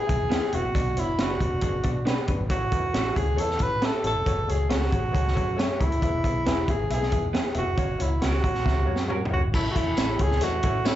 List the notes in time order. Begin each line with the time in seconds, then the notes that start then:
Already playing: G#4
0.07 B1 B3 E4 G#4 E5, kick, closed hi-hat
0.21 E2
0.30 B3 E4 G#4 E5, snare, closed hi-hat
0.52 E1 B3 E4 F#4 G#4 E5, closed hi-hat
0.64 A#1
0.75 B1 B2 B3 D4 F#4 D5, kick, closed hi-hat
0.95 F#1 B3 D4 F#4 C#5, closed hi-hat
1.00 E4
1.18 F#1 B3 D4 F#4 B4 D5, snare, closed hi-hat
1.23 F#4
1.40 E1 B3 D4 F#4 D5, kick, closed hi-hat
1.61 F#1 B3 D4 F#4 G#4, kick, closed hi-hat
1.83 B2 B3 D4 F#4 D5, kick, closed hi-hat
2.05 B3 D4 F#4 G#4 B4, snare, closed hi-hat
2.27 F#2 B3 D4 F#4 B4, kick, closed hi-hat
2.39 G#1
2.49 A1 A2 A3 C#4 E4 F#4 C#5, kick, closed hi-hat
2.71 E2 A3 C#4 E4 B4, kick, closed hi-hat
2.93 A1 A3 C#4 E4 F#4 A4, snare, closed hi-hat
3.14 C#2 A3 C#4 E4 G#4 C#5, kick, closed hi-hat
3.36 E2 A3 C#4 E4 A4 C#5, closed hi-hat
3.50 snare
3.59 A2 A3 C#4 E4 F#4 B4, kick, closed hi-hat
3.82 A3 C#4 E4 A4 B4, snare, closed hi-hat
4.03 A1 A3 C#4 E4 C#5, closed hi-hat
4.07 A4
4.15 F1
4.26 F#1 A3 F#4 G#4 C#5, kick, closed hi-hat
4.47 C#2 A3 F#4 G#4 C#5, closed hi-hat
4.69 C#2 A3 C#4 F#4 G#4 C#5, snare, closed hi-hat
4.82 snare
4.91 A1 A3 F#4 G#4 C#5, kick, closed hi-hat
5.12 C#2 A3 F#4 G#4 C#5, kick, closed hi-hat
5.27 snare
5.35 F#2 A3 F#4 G#4 C#5, kick, closed hi-hat
5.56 A3 C#4 F#4 G#4 C#5, snare, closed hi-hat
5.78 C#2 A3 E4 F#4 G#4 C#5, kick, closed hi-hat
5.92 D#1, closed hi-hat
6.01 E1 E3 B3 E4 G#4 E5, kick, closed hi-hat
6.24 B1 B3 E4 G#4 E5, kick, closed hi-hat
6.46 E1 B3 E4 G#4 E5, snare, closed hi-hat
6.68 G#1 B3 E4 G#4 E5, kick, closed hi-hat
6.90 B1 B3 E4 G#4 E5, closed hi-hat
7.02 snare
7.12 E2 B3 E4 G#4 E5, kick, closed hi-hat
7.33 B3 E4 G#4 E5, snare, closed hi-hat
7.54 E1 B3 E4 F#4 G#4 E5, closed hi-hat
7.67 F1
7.76 F#1 A#3 C#4 F#4 C#5, kick, closed hi-hat
7.98 C#2 A#3 C#4 F#4 C#5, closed hi-hat
8.02 E4
8.21 C#2 A#3 C#4 F#4 A#4 C#5, snare, closed hi-hat
8.33 snare
8.43 A#1 A#3 C#4 F#4 C#5, kick, closed hi-hat
8.54 snare
8.64 C#2 A#3 C#4 F#4 E5, kick, snare
8.85 F#2 A#3 C#4 F#4 C#5
8.96 snare
9.08 A#3 C#4 F#4 A#4 C#5, mid tom
9.25 floor tom
9.30 C#2 A#3 C#4 F#4 C#5
9.44 G#1
9.54 A1 A2 A3 C#4 E4 A4 C#5, kick, crash, tambourine
9.71 A3 C#4 F#4
9.75 E2 E4 E5, kick, closed hi-hat
9.96 A1 A3 C#4 E4 A4 C#5, snare, closed hi-hat, tambourine
10.19 C#2 A3 C#4 E4 G#4 C#5, kick, closed hi-hat
10.31 snare
10.41 E2 A3 C#4 E4 F#4 C#5, closed hi-hat, tambourine
10.63 A2 A3 C#4 E4 C#5, kick, closed hi-hat
10.84 A3 C#4 E4 A4 C#5, snare, closed hi-hat, tambourine